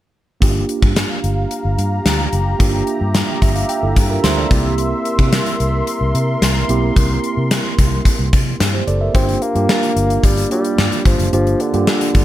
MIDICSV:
0, 0, Header, 1, 6, 480
1, 0, Start_track
1, 0, Tempo, 545455
1, 369, Time_signature, 4, 2, 24, 8
1, 10778, End_track
2, 0, Start_track
2, 0, Title_t, "Analog synth pad"
2, 0, Program_c, 0, 89
2, 366, Note_on_c, 0, 67, 69
2, 367, Note_on_c, 0, 77, 63
2, 367, Note_on_c, 0, 82, 73
2, 2269, Note_off_c, 0, 77, 0
2, 2288, Note_on_c, 0, 76, 64
2, 3932, Note_off_c, 0, 67, 0
2, 3933, Note_off_c, 0, 82, 0
2, 3967, Note_on_c, 0, 70, 71
2, 3967, Note_on_c, 0, 84, 82
2, 8013, Note_off_c, 0, 70, 0
2, 8013, Note_off_c, 0, 76, 0
2, 8013, Note_off_c, 0, 84, 0
2, 10778, End_track
3, 0, Start_track
3, 0, Title_t, "Tine electric piano"
3, 0, Program_c, 1, 4
3, 357, Note_on_c, 1, 58, 64
3, 364, Note_on_c, 1, 62, 57
3, 371, Note_on_c, 1, 65, 57
3, 378, Note_on_c, 1, 67, 70
3, 516, Control_c, 1, 64, 127
3, 2248, Note_off_c, 1, 58, 0
3, 2251, Note_off_c, 1, 62, 0
3, 2255, Note_off_c, 1, 65, 0
3, 2258, Note_off_c, 1, 67, 0
3, 2277, Note_on_c, 1, 58, 64
3, 2284, Note_on_c, 1, 62, 59
3, 2291, Note_on_c, 1, 65, 60
3, 2297, Note_on_c, 1, 67, 73
3, 3009, Note_on_c, 1, 76, 66
3, 3121, Note_off_c, 1, 76, 0
3, 3129, Note_on_c, 1, 77, 59
3, 3227, Note_off_c, 1, 62, 0
3, 3231, Note_off_c, 1, 65, 0
3, 3234, Note_off_c, 1, 67, 0
3, 3241, Note_off_c, 1, 77, 0
3, 3249, Note_on_c, 1, 79, 62
3, 3371, Note_on_c, 1, 69, 58
3, 3376, Note_on_c, 1, 64, 50
3, 3484, Note_off_c, 1, 69, 0
3, 3487, Note_off_c, 1, 64, 0
3, 3488, Note_on_c, 1, 67, 66
3, 3493, Note_on_c, 1, 62, 55
3, 3584, Note_off_c, 1, 79, 0
3, 3602, Note_off_c, 1, 67, 0
3, 3605, Note_off_c, 1, 62, 0
3, 3609, Note_on_c, 1, 70, 60
3, 3609, Note_on_c, 1, 82, 57
3, 3614, Note_on_c, 1, 65, 50
3, 3720, Note_off_c, 1, 82, 0
3, 3723, Note_off_c, 1, 70, 0
3, 3726, Note_off_c, 1, 65, 0
3, 3730, Note_on_c, 1, 72, 59
3, 3730, Note_on_c, 1, 84, 59
3, 3735, Note_on_c, 1, 67, 49
3, 3843, Note_off_c, 1, 72, 0
3, 3846, Note_off_c, 1, 67, 0
3, 3848, Note_on_c, 1, 74, 57
3, 3854, Note_on_c, 1, 69, 48
3, 3929, Note_off_c, 1, 58, 0
3, 3958, Note_on_c, 1, 58, 72
3, 3965, Note_on_c, 1, 60, 65
3, 3972, Note_on_c, 1, 64, 62
3, 3980, Note_on_c, 1, 67, 75
3, 3981, Control_c, 1, 64, 0
3, 4077, Note_off_c, 1, 74, 0
3, 4079, Note_off_c, 1, 69, 0
3, 4120, Control_c, 1, 64, 127
3, 4176, Note_off_c, 1, 84, 0
3, 5848, Note_off_c, 1, 58, 0
3, 5852, Note_off_c, 1, 60, 0
3, 5855, Note_off_c, 1, 64, 0
3, 5859, Note_off_c, 1, 67, 0
3, 5878, Note_on_c, 1, 58, 68
3, 5885, Note_on_c, 1, 60, 60
3, 5891, Note_on_c, 1, 64, 65
3, 5898, Note_on_c, 1, 67, 76
3, 7530, Note_off_c, 1, 58, 0
3, 7533, Note_off_c, 1, 60, 0
3, 7536, Note_off_c, 1, 64, 0
3, 7540, Note_off_c, 1, 67, 0
3, 7690, Note_on_c, 1, 72, 54
3, 7695, Note_on_c, 1, 67, 47
3, 7803, Note_off_c, 1, 72, 0
3, 7806, Note_off_c, 1, 67, 0
3, 7810, Note_on_c, 1, 74, 65
3, 7816, Note_on_c, 1, 69, 56
3, 7923, Note_off_c, 1, 74, 0
3, 7927, Note_off_c, 1, 69, 0
3, 7929, Note_on_c, 1, 76, 53
3, 7935, Note_on_c, 1, 70, 46
3, 8042, Note_on_c, 1, 58, 64
3, 8045, Note_on_c, 1, 62, 59
3, 8049, Note_on_c, 1, 65, 57
3, 8052, Note_on_c, 1, 67, 71
3, 8061, Control_c, 1, 64, 0
3, 8157, Note_off_c, 1, 76, 0
3, 8160, Note_off_c, 1, 70, 0
3, 8193, Control_c, 1, 64, 127
3, 8295, Note_off_c, 1, 58, 0
3, 8296, Note_off_c, 1, 62, 0
3, 8298, Note_off_c, 1, 65, 0
3, 8300, Note_off_c, 1, 67, 0
3, 8402, Note_on_c, 1, 58, 67
3, 8404, Note_on_c, 1, 62, 61
3, 8409, Note_on_c, 1, 65, 59
3, 8411, Note_on_c, 1, 67, 72
3, 8987, Note_off_c, 1, 58, 0
3, 8988, Note_off_c, 1, 62, 0
3, 8991, Note_off_c, 1, 65, 0
3, 8992, Note_off_c, 1, 67, 0
3, 9242, Note_on_c, 1, 58, 66
3, 9247, Note_on_c, 1, 62, 58
3, 9250, Note_on_c, 1, 65, 61
3, 9253, Note_on_c, 1, 67, 72
3, 9744, Note_off_c, 1, 58, 0
3, 9747, Note_off_c, 1, 62, 0
3, 9748, Note_off_c, 1, 65, 0
3, 9750, Note_off_c, 1, 67, 0
3, 9963, Note_on_c, 1, 58, 65
3, 9967, Note_on_c, 1, 62, 61
3, 9970, Note_on_c, 1, 65, 63
3, 9973, Note_on_c, 1, 67, 73
3, 10215, Note_off_c, 1, 58, 0
3, 10217, Note_off_c, 1, 62, 0
3, 10219, Note_off_c, 1, 65, 0
3, 10220, Note_off_c, 1, 67, 0
3, 10324, Note_on_c, 1, 58, 66
3, 10327, Note_on_c, 1, 62, 62
3, 10331, Note_on_c, 1, 65, 62
3, 10335, Note_on_c, 1, 67, 76
3, 10778, Note_off_c, 1, 58, 0
3, 10778, Note_off_c, 1, 62, 0
3, 10778, Note_off_c, 1, 65, 0
3, 10778, Note_off_c, 1, 67, 0
3, 10778, End_track
4, 0, Start_track
4, 0, Title_t, "Bassoon"
4, 0, Program_c, 2, 70
4, 8052, Note_on_c, 2, 60, 93
4, 8295, Note_on_c, 2, 58, 94
4, 8308, Note_off_c, 2, 60, 0
4, 9014, Note_on_c, 2, 55, 79
4, 9027, Note_off_c, 2, 58, 0
4, 9248, Note_off_c, 2, 55, 0
4, 9253, Note_on_c, 2, 55, 85
4, 9697, Note_off_c, 2, 55, 0
4, 9734, Note_on_c, 2, 53, 74
4, 9955, Note_off_c, 2, 53, 0
4, 9974, Note_on_c, 2, 53, 84
4, 10215, Note_on_c, 2, 50, 75
4, 10228, Note_off_c, 2, 53, 0
4, 10778, Note_off_c, 2, 50, 0
4, 10778, End_track
5, 0, Start_track
5, 0, Title_t, "Fingered electric bass"
5, 0, Program_c, 3, 33
5, 368, Note_on_c, 3, 31, 84
5, 548, Note_off_c, 3, 31, 0
5, 726, Note_on_c, 3, 43, 83
5, 907, Note_off_c, 3, 43, 0
5, 1089, Note_on_c, 3, 31, 72
5, 1269, Note_off_c, 3, 31, 0
5, 1450, Note_on_c, 3, 31, 75
5, 1539, Note_off_c, 3, 31, 0
5, 1568, Note_on_c, 3, 43, 80
5, 1748, Note_off_c, 3, 43, 0
5, 1807, Note_on_c, 3, 38, 74
5, 1988, Note_off_c, 3, 38, 0
5, 2048, Note_on_c, 3, 30, 76
5, 2229, Note_off_c, 3, 30, 0
5, 2289, Note_on_c, 3, 31, 82
5, 2469, Note_off_c, 3, 31, 0
5, 2649, Note_on_c, 3, 43, 85
5, 2829, Note_off_c, 3, 43, 0
5, 3010, Note_on_c, 3, 31, 77
5, 3190, Note_off_c, 3, 31, 0
5, 3368, Note_on_c, 3, 31, 82
5, 3458, Note_off_c, 3, 31, 0
5, 3489, Note_on_c, 3, 43, 81
5, 3669, Note_off_c, 3, 43, 0
5, 3728, Note_on_c, 3, 38, 83
5, 3908, Note_off_c, 3, 38, 0
5, 3968, Note_on_c, 3, 36, 85
5, 4328, Note_off_c, 3, 36, 0
5, 4565, Note_on_c, 3, 48, 90
5, 4747, Note_off_c, 3, 48, 0
5, 4929, Note_on_c, 3, 36, 82
5, 5109, Note_off_c, 3, 36, 0
5, 5287, Note_on_c, 3, 36, 78
5, 5378, Note_off_c, 3, 36, 0
5, 5408, Note_on_c, 3, 48, 86
5, 5588, Note_off_c, 3, 48, 0
5, 5647, Note_on_c, 3, 36, 86
5, 5827, Note_off_c, 3, 36, 0
5, 5888, Note_on_c, 3, 35, 76
5, 6068, Note_off_c, 3, 35, 0
5, 6128, Note_on_c, 3, 36, 95
5, 6308, Note_off_c, 3, 36, 0
5, 6487, Note_on_c, 3, 48, 77
5, 6668, Note_off_c, 3, 48, 0
5, 6850, Note_on_c, 3, 36, 76
5, 7030, Note_off_c, 3, 36, 0
5, 7207, Note_on_c, 3, 36, 78
5, 7297, Note_off_c, 3, 36, 0
5, 7330, Note_on_c, 3, 48, 81
5, 7510, Note_off_c, 3, 48, 0
5, 7569, Note_on_c, 3, 43, 84
5, 7749, Note_off_c, 3, 43, 0
5, 7808, Note_on_c, 3, 30, 80
5, 7988, Note_off_c, 3, 30, 0
5, 8048, Note_on_c, 3, 31, 93
5, 8229, Note_off_c, 3, 31, 0
5, 8408, Note_on_c, 3, 43, 82
5, 8498, Note_off_c, 3, 43, 0
5, 8767, Note_on_c, 3, 31, 75
5, 8948, Note_off_c, 3, 31, 0
5, 9006, Note_on_c, 3, 31, 80
5, 9187, Note_off_c, 3, 31, 0
5, 9488, Note_on_c, 3, 43, 84
5, 9578, Note_off_c, 3, 43, 0
5, 9728, Note_on_c, 3, 31, 83
5, 9819, Note_off_c, 3, 31, 0
5, 9849, Note_on_c, 3, 30, 78
5, 9939, Note_off_c, 3, 30, 0
5, 9968, Note_on_c, 3, 31, 97
5, 10149, Note_off_c, 3, 31, 0
5, 10330, Note_on_c, 3, 43, 84
5, 10420, Note_off_c, 3, 43, 0
5, 10691, Note_on_c, 3, 31, 88
5, 10778, Note_off_c, 3, 31, 0
5, 10778, End_track
6, 0, Start_track
6, 0, Title_t, "Drums"
6, 368, Note_on_c, 9, 42, 69
6, 369, Note_on_c, 9, 36, 88
6, 456, Note_off_c, 9, 42, 0
6, 457, Note_off_c, 9, 36, 0
6, 606, Note_on_c, 9, 42, 61
6, 694, Note_off_c, 9, 42, 0
6, 726, Note_on_c, 9, 36, 76
6, 814, Note_off_c, 9, 36, 0
6, 847, Note_on_c, 9, 42, 82
6, 849, Note_on_c, 9, 38, 104
6, 935, Note_off_c, 9, 42, 0
6, 937, Note_off_c, 9, 38, 0
6, 1090, Note_on_c, 9, 42, 63
6, 1178, Note_off_c, 9, 42, 0
6, 1328, Note_on_c, 9, 42, 72
6, 1416, Note_off_c, 9, 42, 0
6, 1571, Note_on_c, 9, 42, 74
6, 1659, Note_off_c, 9, 42, 0
6, 1810, Note_on_c, 9, 38, 89
6, 1811, Note_on_c, 9, 42, 88
6, 1898, Note_off_c, 9, 38, 0
6, 1899, Note_off_c, 9, 42, 0
6, 2047, Note_on_c, 9, 42, 67
6, 2135, Note_off_c, 9, 42, 0
6, 2288, Note_on_c, 9, 36, 88
6, 2288, Note_on_c, 9, 42, 72
6, 2376, Note_off_c, 9, 36, 0
6, 2376, Note_off_c, 9, 42, 0
6, 2526, Note_on_c, 9, 42, 56
6, 2614, Note_off_c, 9, 42, 0
6, 2767, Note_on_c, 9, 42, 83
6, 2769, Note_on_c, 9, 38, 104
6, 2855, Note_off_c, 9, 42, 0
6, 2857, Note_off_c, 9, 38, 0
6, 3009, Note_on_c, 9, 42, 63
6, 3010, Note_on_c, 9, 36, 71
6, 3097, Note_off_c, 9, 42, 0
6, 3098, Note_off_c, 9, 36, 0
6, 3129, Note_on_c, 9, 42, 52
6, 3217, Note_off_c, 9, 42, 0
6, 3247, Note_on_c, 9, 42, 72
6, 3335, Note_off_c, 9, 42, 0
6, 3489, Note_on_c, 9, 36, 89
6, 3489, Note_on_c, 9, 42, 75
6, 3577, Note_off_c, 9, 36, 0
6, 3577, Note_off_c, 9, 42, 0
6, 3729, Note_on_c, 9, 38, 85
6, 3730, Note_on_c, 9, 42, 87
6, 3817, Note_off_c, 9, 38, 0
6, 3818, Note_off_c, 9, 42, 0
6, 3967, Note_on_c, 9, 42, 73
6, 3968, Note_on_c, 9, 36, 92
6, 4055, Note_off_c, 9, 42, 0
6, 4056, Note_off_c, 9, 36, 0
6, 4207, Note_on_c, 9, 42, 73
6, 4295, Note_off_c, 9, 42, 0
6, 4447, Note_on_c, 9, 42, 58
6, 4535, Note_off_c, 9, 42, 0
6, 4566, Note_on_c, 9, 36, 73
6, 4654, Note_off_c, 9, 36, 0
6, 4685, Note_on_c, 9, 42, 84
6, 4687, Note_on_c, 9, 38, 100
6, 4773, Note_off_c, 9, 42, 0
6, 4775, Note_off_c, 9, 38, 0
6, 4807, Note_on_c, 9, 42, 58
6, 4895, Note_off_c, 9, 42, 0
6, 4928, Note_on_c, 9, 42, 63
6, 5016, Note_off_c, 9, 42, 0
6, 5167, Note_on_c, 9, 42, 75
6, 5255, Note_off_c, 9, 42, 0
6, 5411, Note_on_c, 9, 42, 75
6, 5499, Note_off_c, 9, 42, 0
6, 5651, Note_on_c, 9, 38, 85
6, 5652, Note_on_c, 9, 42, 90
6, 5739, Note_off_c, 9, 38, 0
6, 5740, Note_off_c, 9, 42, 0
6, 5888, Note_on_c, 9, 42, 71
6, 5976, Note_off_c, 9, 42, 0
6, 6128, Note_on_c, 9, 36, 89
6, 6129, Note_on_c, 9, 42, 75
6, 6216, Note_off_c, 9, 36, 0
6, 6217, Note_off_c, 9, 42, 0
6, 6368, Note_on_c, 9, 42, 58
6, 6456, Note_off_c, 9, 42, 0
6, 6608, Note_on_c, 9, 42, 87
6, 6610, Note_on_c, 9, 38, 99
6, 6696, Note_off_c, 9, 42, 0
6, 6698, Note_off_c, 9, 38, 0
6, 6851, Note_on_c, 9, 36, 72
6, 6851, Note_on_c, 9, 42, 66
6, 6939, Note_off_c, 9, 36, 0
6, 6939, Note_off_c, 9, 42, 0
6, 7087, Note_on_c, 9, 36, 75
6, 7089, Note_on_c, 9, 42, 73
6, 7175, Note_off_c, 9, 36, 0
6, 7177, Note_off_c, 9, 42, 0
6, 7330, Note_on_c, 9, 36, 95
6, 7332, Note_on_c, 9, 42, 78
6, 7418, Note_off_c, 9, 36, 0
6, 7420, Note_off_c, 9, 42, 0
6, 7572, Note_on_c, 9, 38, 92
6, 7573, Note_on_c, 9, 42, 93
6, 7660, Note_off_c, 9, 38, 0
6, 7661, Note_off_c, 9, 42, 0
6, 7810, Note_on_c, 9, 42, 71
6, 7898, Note_off_c, 9, 42, 0
6, 8049, Note_on_c, 9, 36, 94
6, 8049, Note_on_c, 9, 42, 76
6, 8137, Note_off_c, 9, 36, 0
6, 8137, Note_off_c, 9, 42, 0
6, 8172, Note_on_c, 9, 42, 47
6, 8260, Note_off_c, 9, 42, 0
6, 8288, Note_on_c, 9, 42, 58
6, 8376, Note_off_c, 9, 42, 0
6, 8409, Note_on_c, 9, 42, 41
6, 8497, Note_off_c, 9, 42, 0
6, 8529, Note_on_c, 9, 38, 102
6, 8617, Note_off_c, 9, 38, 0
6, 8650, Note_on_c, 9, 42, 55
6, 8738, Note_off_c, 9, 42, 0
6, 8769, Note_on_c, 9, 42, 63
6, 8857, Note_off_c, 9, 42, 0
6, 8890, Note_on_c, 9, 42, 52
6, 8978, Note_off_c, 9, 42, 0
6, 9007, Note_on_c, 9, 36, 77
6, 9008, Note_on_c, 9, 42, 72
6, 9095, Note_off_c, 9, 36, 0
6, 9096, Note_off_c, 9, 42, 0
6, 9129, Note_on_c, 9, 42, 52
6, 9217, Note_off_c, 9, 42, 0
6, 9250, Note_on_c, 9, 42, 76
6, 9338, Note_off_c, 9, 42, 0
6, 9368, Note_on_c, 9, 42, 50
6, 9456, Note_off_c, 9, 42, 0
6, 9490, Note_on_c, 9, 38, 91
6, 9578, Note_off_c, 9, 38, 0
6, 9609, Note_on_c, 9, 42, 43
6, 9697, Note_off_c, 9, 42, 0
6, 9728, Note_on_c, 9, 36, 80
6, 9729, Note_on_c, 9, 42, 71
6, 9816, Note_off_c, 9, 36, 0
6, 9817, Note_off_c, 9, 42, 0
6, 9852, Note_on_c, 9, 42, 55
6, 9940, Note_off_c, 9, 42, 0
6, 9970, Note_on_c, 9, 42, 77
6, 10058, Note_off_c, 9, 42, 0
6, 10092, Note_on_c, 9, 42, 45
6, 10180, Note_off_c, 9, 42, 0
6, 10207, Note_on_c, 9, 42, 60
6, 10295, Note_off_c, 9, 42, 0
6, 10328, Note_on_c, 9, 42, 44
6, 10416, Note_off_c, 9, 42, 0
6, 10448, Note_on_c, 9, 38, 104
6, 10536, Note_off_c, 9, 38, 0
6, 10569, Note_on_c, 9, 42, 57
6, 10657, Note_off_c, 9, 42, 0
6, 10689, Note_on_c, 9, 42, 61
6, 10690, Note_on_c, 9, 36, 75
6, 10777, Note_off_c, 9, 42, 0
6, 10778, Note_off_c, 9, 36, 0
6, 10778, End_track
0, 0, End_of_file